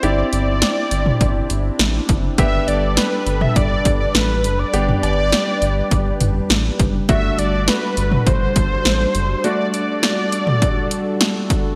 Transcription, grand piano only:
\new Staff \with { instrumentName = "Grand piano" } { \time 4/4 \key g \major \tempo 4 = 102 <c' e' g'>1 | <b d' g'>1 | <b d' g'>1 | <a d' fis'>1 |
<a d' fis'>1 | }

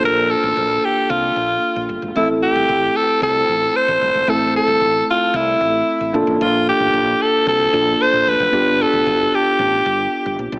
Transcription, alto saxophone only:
\new Staff \with { instrumentName = "Alto saxophone" } { \time 4/4 \key a \phrygian \tempo 4 = 113 bes'8 a'4 g'8 f'4. r8 | e'8 g'4 a'8 a'4 c''4 | a'8 a'4 f'8 e'4. r8 | f'8 g'4 a'8 a'4 c''8 b'8~ |
b'8 a'4 g'2 r8 | }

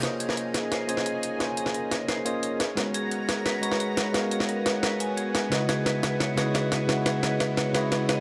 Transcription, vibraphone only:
\new Staff \with { instrumentName = "Vibraphone" } { \time 4/4 \key bes \phrygian \tempo 4 = 175 r8 aes'8 bes'8 r8 c''8 aes'8 aes'8 r8 | r8 aes'8 bes'8 r8 c''8 aes'8 aes'8 r8 | r8 aes'8 bes'8 r8 ces''8 aes'8 aes'8 r8 | r8 aes'8 bes'8 r8 ces''8 aes''8 aes'8 r8 |
r8 aes'8 ces''8 r8 des''8 aes'8 aes'8 ees''8 | r8 aes'8 ces''8 r8 des''8 aes'8 aes'8 ees''8 | }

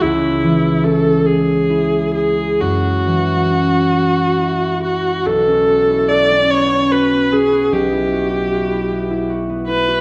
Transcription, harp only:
\new Staff \with { instrumentName = "Harp" } { \time 6/8 \key cis \minor \tempo 4. = 48 <cis, e' gis'>8 e8 cis'8 gis'8 e'8 gis'8 | fis,8 e8 cis'8 fis'8 e'8 fis'8 | \key e \mixolydian b,,16 cis'16 fis'16 e'16 fis'16 cis'16 b16 cis'16 fis'16 b16 cis'16 fis'16 | b,,16 e'16 fis'16 e'16 fis'16 e'16 b16 e'16 fis'16 b16 e'16 fis'16 | }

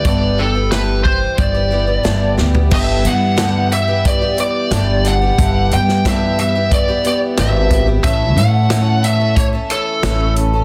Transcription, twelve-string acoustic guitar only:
\new Staff \with { instrumentName = "Twelve-string acoustic guitar" } { \clef bass \time 4/4 \key g \lydian \tempo 4 = 90 <g, d e g b g'>8 <e g b g'>16 <e g b g'>16 <g, d e g b g'>8 <e g g'>8. <e g b g'>16 <e g b g'>16 <e g b g'>16 <g, d e g b g'>8 <e g b g'>16 <e g b g'>16 | <g, d e g b g'>8 <e g b g'>8 <g, d e g b g'>8 <e g b g'>16 <e g b g'>8 <e g b g'>16 <e g b g'>8 <g, d e g b g'>8. <e g b g'>16 | <g, d e g b g'>8 <e g b g'>8 <g, d e g b g'>8 <e g b g'>16 <e g b g'>8 <e g b g'>16 <e g b g'>8 <g, d e g b g'>8. <e g b g'>16 | <a, e a cis' a'>8 <e a cis' a'>8 <a, e a cis' a'>8 <e a cis' a'>16 <a cis' a'>8 <a cis' a'>16 <e a cis' a'>8 <a, e a cis' a'>8. <a cis' a'>16 | }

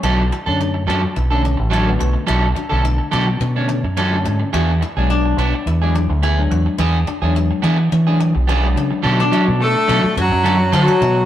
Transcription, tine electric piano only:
<<
  \new Staff \with { instrumentName = "Tine electric piano" } { \time 4/4 \key b \dorian \tempo 4 = 106 r1 | r1 | r1 | r2. b''4 |
r1 | }
  \new Staff \with { instrumentName = "Tine electric piano" } { \clef bass \time 4/4 \key b \dorian r8. <d a cis'>8. r8. <d a cis'>8 r8 <d a b>8. | r8. <d a d'>8. r8. <d a cis'>8 r8 <d a cis'>8. | r8. <fis gis d'>8. r8. <fis gis e'>8 r8 <fis gis d'>8. | r8. <fis gis d'>8. r8. <fis gis d'>8 r8 <fis gis d'>8. |
r1 | }
>>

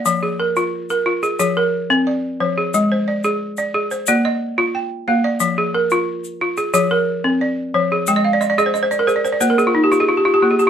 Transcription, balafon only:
<<
  \new Staff \with { instrumentName = "Balafon" } { \time 4/4 \key f \dorian \tempo 4 = 90 << { <d'' f''>16 aes'16 bes'8. bes'8 aes'16 aes'16 bes'8. d''8 c''16 aes'16~ | aes'16 c''16 d''8. d''8 c''16 d''16 ees''8. g''8 f''16 d''16~ | d''16 aes'16 bes'8. r8 aes'16 aes'16 bes'8. d''8 c''16 aes'16~ | aes'16 r2. r8. | } \\ { r1 | r1 | r1 | g''32 ees''32 f''32 d''32 ees''32 d''32 ees''32 c''32 ees''32 c''32 d''32 bes'32 c''32 d''32 c''32 d''32 c''32 bes'32 aes'32 f'32 ees'32 g'16 aes'32 f'32 g'32 f'32 g'32 f'32 aes'32 g'16 | } >> }
  \new Staff \with { instrumentName = "Balafon" } { \time 4/4 \key f \dorian f8 r16 f'8 r16 f'8 f8 r16 c'8 r16 f8 | aes8 r16 aes'8 r16 aes'8 bes8 r16 f'8 r16 bes8 | f8 r16 f'8 r16 f'8 f8 r16 c'8 r16 f8 | aes8 r16 aes'8 r16 aes'8 bes8 r16 f'8 r16 bes8 | }
>>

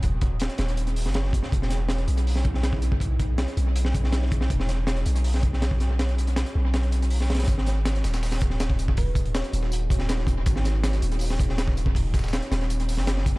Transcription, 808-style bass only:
\new Staff \with { instrumentName = "808-style bass" } { \clef bass \time 4/4 \key gis \minor \tempo 4 = 161 dis,,4~ dis,,16 r16 dis,,4~ dis,,16 fis,,4 r16 | e,,4. b,,2~ b,,8~ | b,,4~ b,,16 r16 b,,2~ b,,8 | e,,4. b,,2~ b,,8~ |
b,,4~ b,,16 r16 b,,2~ b,,8 | gis,,4. dis,,2~ dis,,8~ | dis,,4~ dis,,16 r16 dis,,2~ dis,,8 | gis,,4. dis,,2~ dis,,8~ |
dis,,4~ dis,,16 r16 dis,,4~ dis,,16 fis,,4 r16 | }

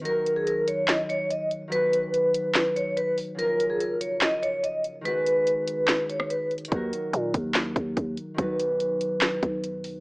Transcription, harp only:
\new Staff \with { instrumentName = "Harp" } { \time 4/4 \key ees \minor \tempo 4 = 144 <ees ges bes ges' bes'>1 | <dis fis b fis' b'>1 | <des f bes f' bes'>1 | <ees aes ces' ges' ces''>1 |
<ees ges bes ges' bes'>1 | <dis fis b fis' b'>1 | }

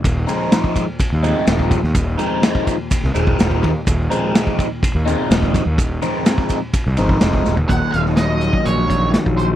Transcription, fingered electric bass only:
\new Staff \with { instrumentName = "Fingered electric bass" } { \clef bass \time 4/4 \key f \phrygian \tempo 4 = 125 ees,,8 r4. r16 ees,8 r16 ees,,8. ees,16 | ees,,8 r4. r16 c,16 ees,,8 ees,,8 ees,16 r16 | ees,,8 r4. r16 ees,8 r16 ees,,8. ees,16 | ees,,8 r4. r16 c,16 aes,,8 f,,8 ees,,8 |
ees,,16 r16 ees,,4. bes,,4~ bes,,16 bes,,8. | }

